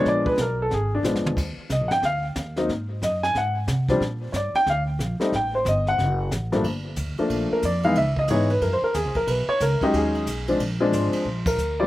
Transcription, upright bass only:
X:1
M:4/4
L:1/8
Q:"Swing" 1/4=182
K:Gm
V:1 name="Upright bass" clef=bass
B,,,2 _C,,2 _A,,,2 (3B,,, A,,, F,,, | E,, z (3C,, B,,, G,,, D,,2 E,,2 | _A,,2 _G,,2 A,,2 C,2 | B,,2 G,, z D,,2 B,,, z |
A,,,2 G,,,2 ^F,,,2 A,,,2 | G,,,2 D,, z B,,, z F,,2 | _D,,2 _A,,2 _G,, z (3E,, D,, B,,, | =B,,, z ^C,, z ^D,,2 B,,,2 |
B,,,2 _A,,, z B,,,2 D,,2 |]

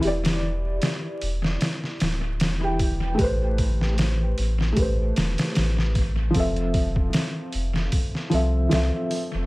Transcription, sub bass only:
X:1
M:4/4
L:1/16
Q:"Swing 16ths" 1/4=76
K:Am
V:1 name="Sub bass" clef=bass
E,,,4 z2 E,,,2 z2 D,,,2 E,,,4 | A,,,6 A,,,2 A,,,2 E,,, z A,,,4 | F,,,4 z2 F,,,2 z2 C,,2 C,, z2 F,,, |]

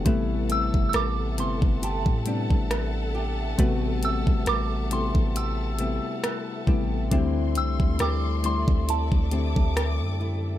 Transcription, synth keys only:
X:1
M:4/4
L:1/8
Q:"Swing 16ths" 1/4=68
K:Ador
V:1 name="Synth keys"
[C,G,A,B,E]3 [C,G,A,B,E]2 [C,G,A,B,D]3 | [C,G,A,B,F]3 [C,G,A,B,E]2 [C,G,A,B,E]2 [C,G,A,B,E] | [D,F,G,A,CE]3 [D,G,A,CE]2 [D,A,CEG]3 |]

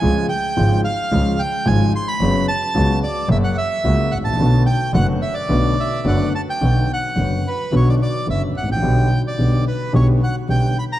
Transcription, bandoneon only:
X:1
M:4/4
L:1/16
Q:1/4=109
K:Bm
V:1 name="Bandoneon"
^g2 =g4 ^e4 g2 ^g2 =c' b- | b2 a4 d2 e f e4 f a- | a2 g2 f2 e d3 e2 f2 a g- | g2 f4 B2 c d d2 e2 f g- |
g3 d3 B2 c2 f2 g2 b ^a |]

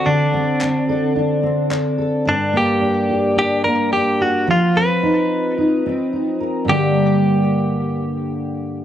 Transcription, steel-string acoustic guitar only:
X:1
M:4/4
L:1/8
Q:"Swing 16ths" 1/4=109
K:Gm
V:1 name="Steel-string acoustic guitar"
[D,CDA] C D A D C D A | G,, B, D G D B, D G | F, C E2 E C E B | [G,,D,G,B,DG]8 |]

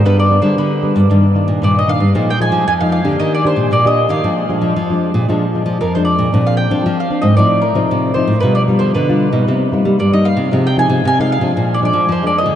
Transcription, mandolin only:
X:1
M:4/4
L:1/16
Q:1/4=115
K:Bbmix
V:1 name="Mandolin"
=B d2 c B4 z4 d e f2- | f g a2 a f f2 e d c2 d e2 f- | f12 B c d2- | d f g3 f2 e d2 B4 c2 |
=B d2 c B4 z4 d e f2- | f g a2 a f f3 d d2 c d e2 |]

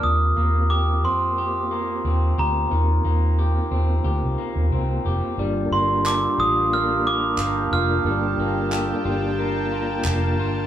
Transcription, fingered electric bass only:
X:1
M:4/4
L:1/16
Q:"Swing 16ths" 1/4=90
K:Gm
V:1 name="Fingered electric bass" clef=bass
E,,2 E,,4 F,,6 E,,2 D,,2 | E,,2 E,,4 E,,2 D,, C,, z E,, C,,2 F,,, z | G,,,2 G,,,4 A,,,6 G,,,2 F,,,2 | G,,,2 G,,,4 G,,,6 F,,,2 G,,,2 |]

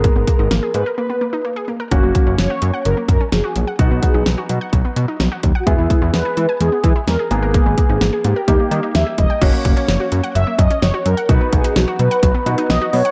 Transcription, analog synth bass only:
X:1
M:4/4
L:1/16
Q:1/4=128
K:F#mix
V:1 name="Analog synth bass" clef=bass
z G,,, z G,,, G,,, z G,, z8 z | F,,, F,,, z F,,, F,,, z F,, z F,,, z F,, z F,,, z A,,, z | B,,, B,,, z B,,, B,,, z B,, z B,,, z B,, z B,,, z D,, z | E,, E,, z E,, E,, z E, z E,, z E, z E,, z G,,,2- |
G,,, G,,, z G,,, G,,, z G,, z D,, z D, z D,, z E,,, z | F,,, z F,,, z F,,, z F,, z F,,, z F,, z F,,, z F,, z | B,,, z B,,, z B,,, z B,, z B,,, z B,, z B,,, z B,, z |]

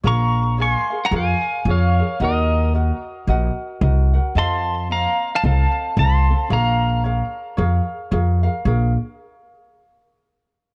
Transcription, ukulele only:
X:1
M:4/4
L:1/8
Q:"Swing" 1/4=111
K:Bbm
V:1 name="Ukulele"
[ABdf]2 [ABdf] [ABf] [ABdf]2 [ABdf] [ABf] | [GBeg]2 [GBeg]2 [GBeg]2 [GBeg] [GBg] | [C=Aef]2 [Cef]2 [CAef]2 [CAef] [CAf] | [ABdf]2 [ABdf]2 [ABdf]2 [ABdf] [ABf] |
[ABdf] z6 z |]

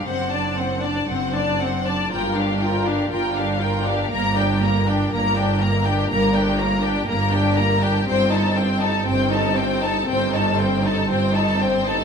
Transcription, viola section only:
X:1
M:4/4
L:1/16
Q:1/4=60
K:Gdor
V:1 name="Viola section"
C D C D C D C D F D F D F D F D | [K:Gm] B, D B, D B, D B, D B, D B, D B, D B, D | C E C E C E C E C E C E C E C E |]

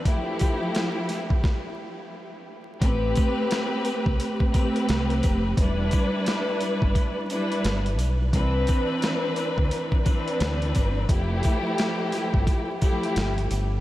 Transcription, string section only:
X:1
M:4/4
L:1/8
Q:"Swing 16ths" 1/4=87
K:Am
V:1 name="String section"
[F,A,EG]4- [F,A,EG] z3 | [A,CGB]4- [A,CGB] [A,CGB]3 | [G,DEB]4- [G,DEB] [G,DEB]2 z | [E,CDB]4- [E,CDB] [E,CDB]3 |
[F,A,EG]4- [F,A,EG] [F,A,EG]2 z |]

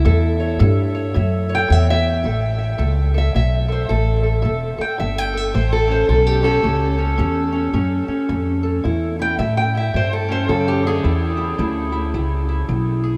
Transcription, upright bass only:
X:1
M:4/4
L:1/8
Q:"Swing" 1/4=109
K:Amix
V:1 name="Upright bass" clef=bass
E,,2 G,,2 F,,2 E,,2 | A,,,2 C,,2 B,,,2 A,,,2 | E,,, z G,,,2 A,,,2 B,,,2 | C,,2 E,,2 F,, z =F,,2 |
E,,2 A,,2 G,,2 F,,2 | E,,2 D,,2 C,,2 B,,,2 |]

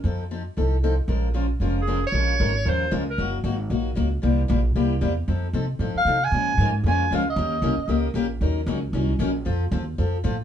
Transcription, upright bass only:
X:1
M:4/4
L:1/8
Q:"Swing" 1/4=230
K:Bbm
V:1 name="Upright bass" clef=bass
F,,4 C,,4 | B,,,4 F,,,4 | B,,,2 A,,,2 E,,2 D,,2 | G,,,2 A,,,2 B,,,2 D,,2 |
C,,2 B,,,2 C,,2 =E,,2 | F,,2 C,2 =A,, z C,2 | B,,2 A,,2 F,,2 D,,2 | E,,2 C,, z D,,2 B,,,2 |
E,,2 D,,2 C,,2 B,,,2 | F,,2 E,,2 F,,2 =A,,2 |]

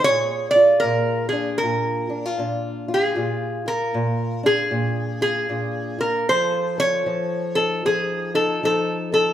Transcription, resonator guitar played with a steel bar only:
X:1
M:4/4
L:1/8
Q:"Swing" 1/4=77
K:Bbmix
V:1 name="Resonator guitar played with a steel bar"
_d =d B A B2 z A- | A B2 A2 A2 B | c _d2 =A _A =A A A |]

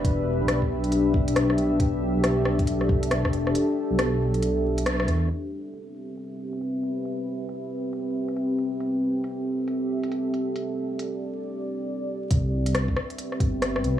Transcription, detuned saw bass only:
X:1
M:4/4
L:1/16
Q:"Swing 16ths" 1/4=137
K:Clyd
V:1 name="Detuned saw bass" clef=bass
E,,,3 B,,,12- B,,,- | B,,,3 B,,,8- B,,,3 E,,,2 | z3 B,,,8- B,,, B,,,2 E,,2 | z16 |
z16 | z16 | z16 | C,,6 z4 G,,,4 C,,2 |]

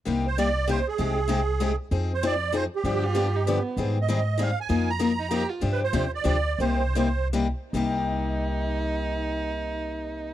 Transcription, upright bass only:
X:1
M:3/4
L:1/8
Q:"Swing" 1/4=194
K:Cm
V:1 name="Upright bass" clef=bass
C,,6 | C,,6 | F,,6 | G,,6 |
A,,6 | F,,6 | G,,2 E,,2 D,,2 | C,,6 |
C,,6- | C,,6 |]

